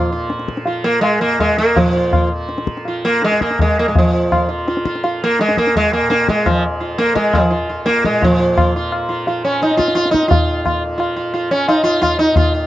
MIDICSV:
0, 0, Header, 1, 4, 480
1, 0, Start_track
1, 0, Tempo, 367422
1, 866, Time_signature, 3, 2, 24, 8
1, 3741, Tempo, 359497
1, 8541, Tempo, 351083
1, 12861, Tempo, 342857
1, 17129, End_track
2, 0, Start_track
2, 0, Title_t, "Sitar"
2, 0, Program_c, 0, 104
2, 0, Note_on_c, 0, 65, 36
2, 142, Note_off_c, 0, 65, 0
2, 161, Note_on_c, 0, 65, 32
2, 377, Note_off_c, 0, 65, 0
2, 875, Note_on_c, 0, 65, 37
2, 1096, Note_off_c, 0, 65, 0
2, 1100, Note_on_c, 0, 58, 91
2, 1315, Note_off_c, 0, 58, 0
2, 1320, Note_on_c, 0, 56, 94
2, 1576, Note_off_c, 0, 56, 0
2, 1581, Note_on_c, 0, 58, 82
2, 1828, Note_off_c, 0, 58, 0
2, 1833, Note_on_c, 0, 56, 83
2, 2063, Note_off_c, 0, 56, 0
2, 2068, Note_on_c, 0, 58, 98
2, 2307, Note_on_c, 0, 53, 73
2, 2316, Note_off_c, 0, 58, 0
2, 2548, Note_on_c, 0, 65, 35
2, 2770, Note_off_c, 0, 65, 0
2, 2792, Note_on_c, 0, 65, 33
2, 2975, Note_off_c, 0, 53, 0
2, 3012, Note_off_c, 0, 65, 0
2, 3760, Note_on_c, 0, 65, 34
2, 3977, Note_off_c, 0, 65, 0
2, 3987, Note_on_c, 0, 58, 89
2, 4211, Note_off_c, 0, 58, 0
2, 4249, Note_on_c, 0, 56, 90
2, 4475, Note_off_c, 0, 56, 0
2, 4481, Note_on_c, 0, 58, 77
2, 4724, Note_off_c, 0, 58, 0
2, 4743, Note_on_c, 0, 56, 78
2, 4975, Note_off_c, 0, 56, 0
2, 4982, Note_on_c, 0, 58, 89
2, 5093, Note_off_c, 0, 58, 0
2, 5099, Note_on_c, 0, 56, 53
2, 5186, Note_off_c, 0, 56, 0
2, 5238, Note_on_c, 0, 53, 69
2, 5693, Note_on_c, 0, 65, 35
2, 5889, Note_off_c, 0, 53, 0
2, 5892, Note_off_c, 0, 65, 0
2, 5908, Note_on_c, 0, 65, 34
2, 6135, Note_off_c, 0, 65, 0
2, 6160, Note_on_c, 0, 65, 37
2, 6381, Note_off_c, 0, 65, 0
2, 6396, Note_on_c, 0, 65, 36
2, 6619, Note_off_c, 0, 65, 0
2, 6641, Note_on_c, 0, 65, 39
2, 6861, Note_off_c, 0, 65, 0
2, 6909, Note_on_c, 0, 58, 91
2, 7130, Note_off_c, 0, 58, 0
2, 7135, Note_on_c, 0, 56, 93
2, 7365, Note_off_c, 0, 56, 0
2, 7370, Note_on_c, 0, 58, 89
2, 7607, Note_off_c, 0, 58, 0
2, 7616, Note_on_c, 0, 56, 92
2, 7832, Note_off_c, 0, 56, 0
2, 7837, Note_on_c, 0, 58, 82
2, 8044, Note_off_c, 0, 58, 0
2, 8060, Note_on_c, 0, 58, 90
2, 8308, Note_off_c, 0, 58, 0
2, 8319, Note_on_c, 0, 56, 89
2, 8544, Note_on_c, 0, 53, 63
2, 8556, Note_off_c, 0, 56, 0
2, 8769, Note_off_c, 0, 53, 0
2, 9014, Note_on_c, 0, 65, 39
2, 9245, Note_off_c, 0, 65, 0
2, 9258, Note_on_c, 0, 58, 99
2, 9486, Note_off_c, 0, 58, 0
2, 9491, Note_on_c, 0, 56, 93
2, 9749, Note_off_c, 0, 56, 0
2, 9756, Note_on_c, 0, 53, 65
2, 9973, Note_on_c, 0, 65, 37
2, 9978, Note_off_c, 0, 53, 0
2, 10205, Note_off_c, 0, 65, 0
2, 10229, Note_on_c, 0, 65, 35
2, 10453, Note_on_c, 0, 58, 96
2, 10454, Note_off_c, 0, 65, 0
2, 10710, Note_off_c, 0, 58, 0
2, 10720, Note_on_c, 0, 56, 90
2, 10933, Note_on_c, 0, 65, 34
2, 10964, Note_off_c, 0, 56, 0
2, 10981, Note_on_c, 0, 53, 78
2, 11160, Note_off_c, 0, 65, 0
2, 11177, Note_on_c, 0, 65, 37
2, 11406, Note_off_c, 0, 65, 0
2, 11429, Note_on_c, 0, 65, 36
2, 11635, Note_off_c, 0, 53, 0
2, 11652, Note_off_c, 0, 65, 0
2, 11688, Note_on_c, 0, 65, 36
2, 11902, Note_off_c, 0, 65, 0
2, 12136, Note_on_c, 0, 65, 36
2, 12363, Note_off_c, 0, 65, 0
2, 12393, Note_on_c, 0, 65, 36
2, 12610, Note_off_c, 0, 65, 0
2, 12625, Note_on_c, 0, 61, 77
2, 12864, Note_off_c, 0, 61, 0
2, 12870, Note_on_c, 0, 63, 75
2, 13071, Note_off_c, 0, 63, 0
2, 13077, Note_on_c, 0, 65, 88
2, 13308, Note_off_c, 0, 65, 0
2, 13325, Note_on_c, 0, 65, 95
2, 13546, Note_off_c, 0, 65, 0
2, 13551, Note_on_c, 0, 63, 90
2, 13784, Note_off_c, 0, 63, 0
2, 13789, Note_on_c, 0, 65, 83
2, 14307, Note_off_c, 0, 65, 0
2, 14324, Note_on_c, 0, 65, 36
2, 14542, Note_off_c, 0, 65, 0
2, 14764, Note_on_c, 0, 65, 37
2, 15001, Note_off_c, 0, 65, 0
2, 15026, Note_on_c, 0, 65, 37
2, 15249, Note_off_c, 0, 65, 0
2, 15266, Note_on_c, 0, 65, 39
2, 15492, Note_off_c, 0, 65, 0
2, 15511, Note_on_c, 0, 61, 78
2, 15749, Note_off_c, 0, 61, 0
2, 15754, Note_on_c, 0, 63, 83
2, 15961, Note_off_c, 0, 63, 0
2, 15966, Note_on_c, 0, 65, 89
2, 16200, Note_off_c, 0, 65, 0
2, 16217, Note_on_c, 0, 65, 95
2, 16454, Note_off_c, 0, 65, 0
2, 16460, Note_on_c, 0, 63, 91
2, 16701, Note_off_c, 0, 63, 0
2, 16707, Note_on_c, 0, 65, 88
2, 16936, Note_off_c, 0, 65, 0
2, 16953, Note_on_c, 0, 65, 35
2, 17129, Note_off_c, 0, 65, 0
2, 17129, End_track
3, 0, Start_track
3, 0, Title_t, "Tanpura"
3, 0, Program_c, 1, 104
3, 0, Note_on_c, 1, 41, 50
3, 0, Note_on_c, 1, 46, 57
3, 0, Note_on_c, 1, 53, 53
3, 135, Note_off_c, 1, 53, 0
3, 135, Note_on_c, 1, 53, 64
3, 828, Note_off_c, 1, 53, 0
3, 828, Note_on_c, 1, 53, 55
3, 1530, Note_off_c, 1, 41, 0
3, 1536, Note_on_c, 1, 41, 59
3, 2265, Note_off_c, 1, 46, 0
3, 2265, Note_on_c, 1, 46, 56
3, 2975, Note_off_c, 1, 53, 0
3, 2975, Note_on_c, 1, 53, 69
3, 3668, Note_off_c, 1, 53, 0
3, 3668, Note_on_c, 1, 53, 55
3, 4366, Note_off_c, 1, 41, 0
3, 4372, Note_on_c, 1, 41, 55
3, 5089, Note_off_c, 1, 46, 0
3, 5094, Note_on_c, 1, 46, 51
3, 5791, Note_off_c, 1, 53, 0
3, 5791, Note_on_c, 1, 53, 59
3, 6514, Note_off_c, 1, 53, 0
3, 6514, Note_on_c, 1, 53, 49
3, 7246, Note_off_c, 1, 41, 0
3, 7252, Note_on_c, 1, 41, 67
3, 7929, Note_off_c, 1, 46, 0
3, 7934, Note_on_c, 1, 46, 57
3, 8645, Note_off_c, 1, 53, 0
3, 8645, Note_on_c, 1, 53, 57
3, 9328, Note_off_c, 1, 53, 0
3, 9328, Note_on_c, 1, 53, 54
3, 10051, Note_off_c, 1, 41, 0
3, 10056, Note_on_c, 1, 41, 64
3, 10751, Note_off_c, 1, 46, 0
3, 10756, Note_on_c, 1, 46, 57
3, 10943, Note_off_c, 1, 46, 0
3, 10943, Note_on_c, 1, 46, 52
3, 11685, Note_off_c, 1, 53, 0
3, 11685, Note_on_c, 1, 53, 68
3, 12381, Note_off_c, 1, 53, 0
3, 12381, Note_on_c, 1, 53, 44
3, 13103, Note_off_c, 1, 41, 0
3, 13109, Note_on_c, 1, 41, 65
3, 13802, Note_off_c, 1, 46, 0
3, 13802, Note_on_c, 1, 46, 45
3, 14518, Note_off_c, 1, 53, 0
3, 14518, Note_on_c, 1, 53, 65
3, 15242, Note_off_c, 1, 53, 0
3, 15242, Note_on_c, 1, 53, 50
3, 15939, Note_off_c, 1, 41, 0
3, 15945, Note_on_c, 1, 41, 59
3, 16626, Note_off_c, 1, 46, 0
3, 16632, Note_on_c, 1, 46, 46
3, 17129, Note_off_c, 1, 41, 0
3, 17129, Note_off_c, 1, 46, 0
3, 17129, Note_off_c, 1, 53, 0
3, 17129, End_track
4, 0, Start_track
4, 0, Title_t, "Tabla"
4, 391, Note_on_c, 9, 62, 65
4, 514, Note_off_c, 9, 62, 0
4, 514, Note_on_c, 9, 62, 54
4, 632, Note_on_c, 9, 37, 59
4, 644, Note_off_c, 9, 62, 0
4, 749, Note_on_c, 9, 62, 57
4, 762, Note_off_c, 9, 37, 0
4, 856, Note_on_c, 9, 63, 75
4, 880, Note_off_c, 9, 62, 0
4, 987, Note_off_c, 9, 63, 0
4, 1349, Note_on_c, 9, 60, 69
4, 1479, Note_off_c, 9, 60, 0
4, 1825, Note_on_c, 9, 60, 68
4, 1825, Note_on_c, 9, 64, 61
4, 1956, Note_off_c, 9, 60, 0
4, 1956, Note_off_c, 9, 64, 0
4, 2060, Note_on_c, 9, 62, 62
4, 2190, Note_off_c, 9, 62, 0
4, 2305, Note_on_c, 9, 63, 97
4, 2305, Note_on_c, 9, 64, 93
4, 2436, Note_off_c, 9, 63, 0
4, 2436, Note_off_c, 9, 64, 0
4, 2780, Note_on_c, 9, 60, 66
4, 2780, Note_on_c, 9, 64, 65
4, 2911, Note_off_c, 9, 60, 0
4, 2911, Note_off_c, 9, 64, 0
4, 3250, Note_on_c, 9, 62, 64
4, 3370, Note_off_c, 9, 62, 0
4, 3370, Note_on_c, 9, 62, 55
4, 3490, Note_on_c, 9, 37, 62
4, 3501, Note_off_c, 9, 62, 0
4, 3621, Note_off_c, 9, 37, 0
4, 3622, Note_on_c, 9, 62, 57
4, 3727, Note_on_c, 9, 63, 76
4, 3753, Note_off_c, 9, 62, 0
4, 3860, Note_off_c, 9, 63, 0
4, 4218, Note_on_c, 9, 62, 76
4, 4345, Note_off_c, 9, 62, 0
4, 4345, Note_on_c, 9, 62, 56
4, 4474, Note_on_c, 9, 37, 56
4, 4478, Note_off_c, 9, 62, 0
4, 4599, Note_on_c, 9, 62, 62
4, 4607, Note_off_c, 9, 37, 0
4, 4713, Note_on_c, 9, 63, 70
4, 4713, Note_on_c, 9, 64, 64
4, 4733, Note_off_c, 9, 62, 0
4, 4847, Note_off_c, 9, 63, 0
4, 4847, Note_off_c, 9, 64, 0
4, 5197, Note_on_c, 9, 63, 96
4, 5197, Note_on_c, 9, 64, 84
4, 5331, Note_off_c, 9, 63, 0
4, 5331, Note_off_c, 9, 64, 0
4, 5687, Note_on_c, 9, 60, 82
4, 5687, Note_on_c, 9, 64, 72
4, 5821, Note_off_c, 9, 60, 0
4, 5821, Note_off_c, 9, 64, 0
4, 6166, Note_on_c, 9, 62, 67
4, 6286, Note_off_c, 9, 62, 0
4, 6286, Note_on_c, 9, 62, 59
4, 6400, Note_on_c, 9, 37, 62
4, 6419, Note_off_c, 9, 62, 0
4, 6532, Note_on_c, 9, 62, 61
4, 6534, Note_off_c, 9, 37, 0
4, 6646, Note_on_c, 9, 63, 83
4, 6665, Note_off_c, 9, 62, 0
4, 6780, Note_off_c, 9, 63, 0
4, 7119, Note_on_c, 9, 62, 84
4, 7243, Note_off_c, 9, 62, 0
4, 7243, Note_on_c, 9, 62, 59
4, 7362, Note_on_c, 9, 37, 60
4, 7377, Note_off_c, 9, 62, 0
4, 7491, Note_on_c, 9, 62, 57
4, 7495, Note_off_c, 9, 37, 0
4, 7606, Note_on_c, 9, 63, 65
4, 7606, Note_on_c, 9, 64, 64
4, 7624, Note_off_c, 9, 62, 0
4, 7739, Note_off_c, 9, 63, 0
4, 7739, Note_off_c, 9, 64, 0
4, 8082, Note_on_c, 9, 62, 76
4, 8216, Note_off_c, 9, 62, 0
4, 8310, Note_on_c, 9, 37, 71
4, 8444, Note_off_c, 9, 37, 0
4, 8545, Note_on_c, 9, 60, 97
4, 8545, Note_on_c, 9, 64, 82
4, 8682, Note_off_c, 9, 60, 0
4, 8682, Note_off_c, 9, 64, 0
4, 9263, Note_on_c, 9, 62, 81
4, 9400, Note_off_c, 9, 62, 0
4, 9502, Note_on_c, 9, 37, 78
4, 9638, Note_off_c, 9, 37, 0
4, 9739, Note_on_c, 9, 60, 88
4, 9739, Note_on_c, 9, 64, 92
4, 9876, Note_off_c, 9, 60, 0
4, 9876, Note_off_c, 9, 64, 0
4, 10467, Note_on_c, 9, 62, 74
4, 10604, Note_off_c, 9, 62, 0
4, 10711, Note_on_c, 9, 37, 77
4, 10848, Note_off_c, 9, 37, 0
4, 10955, Note_on_c, 9, 63, 93
4, 10955, Note_on_c, 9, 64, 90
4, 11091, Note_off_c, 9, 63, 0
4, 11091, Note_off_c, 9, 64, 0
4, 11435, Note_on_c, 9, 60, 77
4, 11435, Note_on_c, 9, 64, 65
4, 11572, Note_off_c, 9, 60, 0
4, 11572, Note_off_c, 9, 64, 0
4, 11910, Note_on_c, 9, 60, 73
4, 12047, Note_off_c, 9, 60, 0
4, 12387, Note_on_c, 9, 63, 76
4, 12524, Note_off_c, 9, 63, 0
4, 12862, Note_on_c, 9, 62, 73
4, 12992, Note_off_c, 9, 62, 0
4, 12992, Note_on_c, 9, 62, 53
4, 13105, Note_on_c, 9, 37, 61
4, 13132, Note_off_c, 9, 62, 0
4, 13226, Note_on_c, 9, 62, 55
4, 13245, Note_off_c, 9, 37, 0
4, 13353, Note_off_c, 9, 62, 0
4, 13353, Note_on_c, 9, 62, 71
4, 13473, Note_off_c, 9, 62, 0
4, 13473, Note_on_c, 9, 62, 51
4, 13596, Note_on_c, 9, 37, 56
4, 13613, Note_off_c, 9, 62, 0
4, 13714, Note_on_c, 9, 62, 57
4, 13736, Note_off_c, 9, 37, 0
4, 13830, Note_on_c, 9, 63, 108
4, 13830, Note_on_c, 9, 64, 90
4, 13854, Note_off_c, 9, 62, 0
4, 13970, Note_off_c, 9, 63, 0
4, 13970, Note_off_c, 9, 64, 0
4, 14313, Note_on_c, 9, 60, 76
4, 14313, Note_on_c, 9, 64, 68
4, 14453, Note_off_c, 9, 60, 0
4, 14453, Note_off_c, 9, 64, 0
4, 14794, Note_on_c, 9, 60, 62
4, 14934, Note_off_c, 9, 60, 0
4, 15275, Note_on_c, 9, 63, 76
4, 15415, Note_off_c, 9, 63, 0
4, 15754, Note_on_c, 9, 60, 75
4, 15894, Note_off_c, 9, 60, 0
4, 16236, Note_on_c, 9, 60, 72
4, 16236, Note_on_c, 9, 64, 57
4, 16376, Note_off_c, 9, 60, 0
4, 16376, Note_off_c, 9, 64, 0
4, 16474, Note_on_c, 9, 62, 59
4, 16614, Note_off_c, 9, 62, 0
4, 16698, Note_on_c, 9, 63, 93
4, 16698, Note_on_c, 9, 64, 90
4, 16838, Note_off_c, 9, 63, 0
4, 16838, Note_off_c, 9, 64, 0
4, 17129, End_track
0, 0, End_of_file